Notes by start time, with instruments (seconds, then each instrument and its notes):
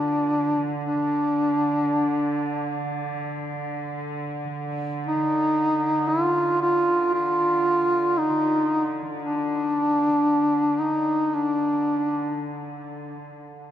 Already playing: cello section D3, duduk D4
0.84 duduk D4
5.07 duduk D#4
6.08 duduk F4
6.61 duduk F4
7.14 duduk F4
8.18 duduk D#4
9.22 duduk D4
10.79 duduk D#4
11.35 duduk D4